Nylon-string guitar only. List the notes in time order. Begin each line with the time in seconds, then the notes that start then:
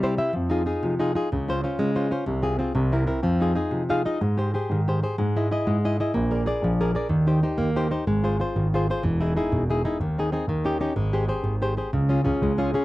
Already playing: G3
0.03 E4 G4 C5
0.18 E4 G4 C5 E5
0.33 F3
0.50 D#4 F4 G#4
0.66 D#4 F4 G#4
0.83 C3
0.99 D#4 F4 G#4
1.15 D#4 F4 G#4
1.32 C#3
1.48 C#4 F4 C5
1.64 C#4 F4 C5
1.79 G#3
1.95 C#4 F4 C5
2.11 C#4 F4 C5
2.26 C3
2.42 C4 F4 G#4
2.59 C4 F4 G#4
2.75 C3
2.92 C4 E4 A#4
3.07 C4 E4 A#4
3.23 F3
3.40 D#4 F4 G#4
3.55 D#4 F4 G#4
3.71 C3
3.90 D#4 F4 G#4 F5
4.05 D#4 F4 G#4 D#5
4.21 G#3
4.37 G4 G#4 C5
4.54 G4 G#4 C5
4.71 D#3
4.88 G4 G#4 C5
5.03 G4 G#4 C5
5.18 G#3
5.36 E4 G#4 D#5
5.51 E4 G#4 D#5
5.67 G#3
5.85 E4 G#4 D#5
6.00 E4 G#4 D#5
6.14 A#3
6.31 G#4 A#4 D5
6.46 G#4 A#4 D5
6.64 F3
6.81 G#4 A#4 D5
6.95 G#4 A#4 D5
7.09 D#3
7.27 D#4 G4 C5
7.43 D#4 G4 C5
7.58 A#3
7.76 D#4 G4 C5
7.91 D#4 G4 C5
8.07 G#3
8.24 F4 G#4 C5
8.40 F4 G#4 C5
8.56 D#3
8.74 F4 G#4 C5
8.90 F4 G#4 C5
9.03 E3
9.20 D#4 E4 G#4
9.36 D#4 E4 G#4
9.52 B2
9.70 D#4 E4 G#4
9.85 D#4 E4 G#4
10.01 D#3
10.18 C4 D#4 G#4
10.32 C4 D#4 G#4
10.49 D#3
10.64 C#4 D#4 G4
10.81 C#4 D#4 G4
10.96 G#3
11.13 G4 G#4 C5
11.28 G4 G#4 C5
11.44 D#3
11.62 G4 G#4 C5
11.77 G4 G#4 C5
11.93 C#3
12.09 C#4 F4 G#4
12.24 C#4 F4 G#4
12.43 G#3
12.58 C#4 F4 G#4
12.74 C#4 F4 G#4